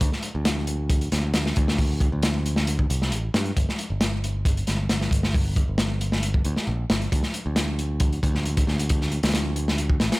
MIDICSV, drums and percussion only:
0, 0, Header, 1, 2, 480
1, 0, Start_track
1, 0, Tempo, 444444
1, 9, Time_signature, 4, 2, 24, 8
1, 11015, End_track
2, 0, Start_track
2, 0, Title_t, "Drums"
2, 10, Note_on_c, 9, 36, 116
2, 11, Note_on_c, 9, 42, 91
2, 118, Note_off_c, 9, 36, 0
2, 119, Note_off_c, 9, 42, 0
2, 134, Note_on_c, 9, 38, 39
2, 242, Note_off_c, 9, 38, 0
2, 243, Note_on_c, 9, 42, 70
2, 351, Note_off_c, 9, 42, 0
2, 487, Note_on_c, 9, 42, 96
2, 489, Note_on_c, 9, 38, 127
2, 595, Note_off_c, 9, 42, 0
2, 597, Note_off_c, 9, 38, 0
2, 725, Note_on_c, 9, 42, 67
2, 833, Note_off_c, 9, 42, 0
2, 967, Note_on_c, 9, 36, 117
2, 969, Note_on_c, 9, 42, 83
2, 1075, Note_off_c, 9, 36, 0
2, 1077, Note_off_c, 9, 42, 0
2, 1093, Note_on_c, 9, 42, 48
2, 1201, Note_off_c, 9, 42, 0
2, 1208, Note_on_c, 9, 42, 74
2, 1211, Note_on_c, 9, 38, 41
2, 1316, Note_off_c, 9, 42, 0
2, 1319, Note_off_c, 9, 38, 0
2, 1443, Note_on_c, 9, 42, 85
2, 1444, Note_on_c, 9, 38, 112
2, 1551, Note_off_c, 9, 42, 0
2, 1552, Note_off_c, 9, 38, 0
2, 1575, Note_on_c, 9, 38, 53
2, 1683, Note_off_c, 9, 38, 0
2, 1684, Note_on_c, 9, 42, 75
2, 1694, Note_on_c, 9, 36, 97
2, 1792, Note_off_c, 9, 42, 0
2, 1802, Note_off_c, 9, 36, 0
2, 1816, Note_on_c, 9, 38, 61
2, 1924, Note_off_c, 9, 38, 0
2, 1927, Note_on_c, 9, 36, 106
2, 1930, Note_on_c, 9, 46, 84
2, 2035, Note_off_c, 9, 36, 0
2, 2038, Note_off_c, 9, 46, 0
2, 2165, Note_on_c, 9, 36, 93
2, 2169, Note_on_c, 9, 42, 72
2, 2273, Note_off_c, 9, 36, 0
2, 2277, Note_off_c, 9, 42, 0
2, 2403, Note_on_c, 9, 42, 89
2, 2412, Note_on_c, 9, 38, 125
2, 2511, Note_off_c, 9, 42, 0
2, 2520, Note_off_c, 9, 38, 0
2, 2653, Note_on_c, 9, 42, 70
2, 2761, Note_off_c, 9, 42, 0
2, 2768, Note_on_c, 9, 38, 58
2, 2876, Note_off_c, 9, 38, 0
2, 2885, Note_on_c, 9, 42, 87
2, 2993, Note_off_c, 9, 42, 0
2, 3013, Note_on_c, 9, 36, 90
2, 3121, Note_off_c, 9, 36, 0
2, 3134, Note_on_c, 9, 42, 69
2, 3242, Note_off_c, 9, 42, 0
2, 3261, Note_on_c, 9, 38, 45
2, 3368, Note_on_c, 9, 42, 82
2, 3369, Note_off_c, 9, 38, 0
2, 3476, Note_off_c, 9, 42, 0
2, 3609, Note_on_c, 9, 38, 107
2, 3611, Note_on_c, 9, 42, 66
2, 3717, Note_off_c, 9, 38, 0
2, 3719, Note_off_c, 9, 42, 0
2, 3730, Note_on_c, 9, 42, 42
2, 3838, Note_off_c, 9, 42, 0
2, 3851, Note_on_c, 9, 36, 109
2, 3852, Note_on_c, 9, 42, 88
2, 3959, Note_off_c, 9, 36, 0
2, 3960, Note_off_c, 9, 42, 0
2, 3983, Note_on_c, 9, 38, 44
2, 4090, Note_on_c, 9, 42, 71
2, 4091, Note_off_c, 9, 38, 0
2, 4198, Note_off_c, 9, 42, 0
2, 4327, Note_on_c, 9, 38, 123
2, 4329, Note_on_c, 9, 42, 81
2, 4435, Note_off_c, 9, 38, 0
2, 4437, Note_off_c, 9, 42, 0
2, 4577, Note_on_c, 9, 42, 72
2, 4685, Note_off_c, 9, 42, 0
2, 4809, Note_on_c, 9, 36, 106
2, 4813, Note_on_c, 9, 42, 90
2, 4917, Note_off_c, 9, 36, 0
2, 4921, Note_off_c, 9, 42, 0
2, 4938, Note_on_c, 9, 42, 47
2, 5045, Note_off_c, 9, 42, 0
2, 5045, Note_on_c, 9, 42, 63
2, 5051, Note_on_c, 9, 38, 44
2, 5153, Note_off_c, 9, 42, 0
2, 5159, Note_off_c, 9, 38, 0
2, 5286, Note_on_c, 9, 38, 106
2, 5289, Note_on_c, 9, 42, 89
2, 5394, Note_off_c, 9, 38, 0
2, 5397, Note_off_c, 9, 42, 0
2, 5414, Note_on_c, 9, 38, 53
2, 5519, Note_on_c, 9, 36, 94
2, 5522, Note_off_c, 9, 38, 0
2, 5534, Note_on_c, 9, 42, 69
2, 5627, Note_off_c, 9, 36, 0
2, 5642, Note_off_c, 9, 42, 0
2, 5652, Note_on_c, 9, 38, 57
2, 5760, Note_off_c, 9, 38, 0
2, 5772, Note_on_c, 9, 36, 119
2, 5779, Note_on_c, 9, 46, 82
2, 5880, Note_off_c, 9, 36, 0
2, 5887, Note_off_c, 9, 46, 0
2, 6008, Note_on_c, 9, 36, 100
2, 6012, Note_on_c, 9, 42, 68
2, 6116, Note_off_c, 9, 36, 0
2, 6120, Note_off_c, 9, 42, 0
2, 6241, Note_on_c, 9, 38, 127
2, 6251, Note_on_c, 9, 42, 86
2, 6349, Note_off_c, 9, 38, 0
2, 6359, Note_off_c, 9, 42, 0
2, 6490, Note_on_c, 9, 42, 75
2, 6598, Note_off_c, 9, 42, 0
2, 6612, Note_on_c, 9, 38, 59
2, 6720, Note_off_c, 9, 38, 0
2, 6726, Note_on_c, 9, 42, 95
2, 6834, Note_off_c, 9, 42, 0
2, 6849, Note_on_c, 9, 36, 91
2, 6957, Note_off_c, 9, 36, 0
2, 6961, Note_on_c, 9, 42, 62
2, 7069, Note_off_c, 9, 42, 0
2, 7089, Note_on_c, 9, 38, 46
2, 7197, Note_off_c, 9, 38, 0
2, 7449, Note_on_c, 9, 38, 127
2, 7450, Note_on_c, 9, 42, 72
2, 7557, Note_off_c, 9, 38, 0
2, 7558, Note_off_c, 9, 42, 0
2, 7578, Note_on_c, 9, 42, 44
2, 7686, Note_off_c, 9, 42, 0
2, 7691, Note_on_c, 9, 36, 111
2, 7695, Note_on_c, 9, 42, 95
2, 7799, Note_off_c, 9, 36, 0
2, 7803, Note_off_c, 9, 42, 0
2, 7805, Note_on_c, 9, 38, 44
2, 7913, Note_off_c, 9, 38, 0
2, 7926, Note_on_c, 9, 42, 67
2, 8034, Note_off_c, 9, 42, 0
2, 8164, Note_on_c, 9, 38, 114
2, 8165, Note_on_c, 9, 42, 90
2, 8272, Note_off_c, 9, 38, 0
2, 8273, Note_off_c, 9, 42, 0
2, 8411, Note_on_c, 9, 42, 67
2, 8519, Note_off_c, 9, 42, 0
2, 8638, Note_on_c, 9, 42, 83
2, 8644, Note_on_c, 9, 36, 114
2, 8746, Note_off_c, 9, 42, 0
2, 8752, Note_off_c, 9, 36, 0
2, 8775, Note_on_c, 9, 42, 45
2, 8883, Note_off_c, 9, 42, 0
2, 8887, Note_on_c, 9, 36, 97
2, 8892, Note_on_c, 9, 42, 76
2, 8995, Note_off_c, 9, 36, 0
2, 9000, Note_off_c, 9, 42, 0
2, 9013, Note_on_c, 9, 38, 37
2, 9121, Note_off_c, 9, 38, 0
2, 9131, Note_on_c, 9, 42, 60
2, 9239, Note_off_c, 9, 42, 0
2, 9256, Note_on_c, 9, 42, 81
2, 9259, Note_on_c, 9, 36, 97
2, 9364, Note_off_c, 9, 42, 0
2, 9367, Note_off_c, 9, 36, 0
2, 9371, Note_on_c, 9, 38, 37
2, 9479, Note_off_c, 9, 38, 0
2, 9498, Note_on_c, 9, 42, 68
2, 9605, Note_off_c, 9, 42, 0
2, 9605, Note_on_c, 9, 42, 85
2, 9614, Note_on_c, 9, 36, 107
2, 9713, Note_off_c, 9, 42, 0
2, 9722, Note_off_c, 9, 36, 0
2, 9730, Note_on_c, 9, 38, 38
2, 9838, Note_off_c, 9, 38, 0
2, 9846, Note_on_c, 9, 42, 59
2, 9954, Note_off_c, 9, 42, 0
2, 9970, Note_on_c, 9, 42, 67
2, 9975, Note_on_c, 9, 38, 97
2, 10026, Note_off_c, 9, 42, 0
2, 10026, Note_on_c, 9, 42, 75
2, 10033, Note_off_c, 9, 38, 0
2, 10033, Note_on_c, 9, 38, 87
2, 10083, Note_off_c, 9, 38, 0
2, 10083, Note_on_c, 9, 38, 116
2, 10092, Note_off_c, 9, 42, 0
2, 10092, Note_on_c, 9, 42, 94
2, 10191, Note_off_c, 9, 38, 0
2, 10200, Note_off_c, 9, 42, 0
2, 10325, Note_on_c, 9, 42, 69
2, 10433, Note_off_c, 9, 42, 0
2, 10456, Note_on_c, 9, 38, 60
2, 10564, Note_off_c, 9, 38, 0
2, 10564, Note_on_c, 9, 42, 83
2, 10672, Note_off_c, 9, 42, 0
2, 10687, Note_on_c, 9, 36, 98
2, 10795, Note_off_c, 9, 36, 0
2, 10799, Note_on_c, 9, 38, 99
2, 10809, Note_on_c, 9, 42, 76
2, 10907, Note_off_c, 9, 38, 0
2, 10917, Note_off_c, 9, 42, 0
2, 10930, Note_on_c, 9, 38, 111
2, 10933, Note_on_c, 9, 42, 83
2, 11015, Note_off_c, 9, 38, 0
2, 11015, Note_off_c, 9, 42, 0
2, 11015, End_track
0, 0, End_of_file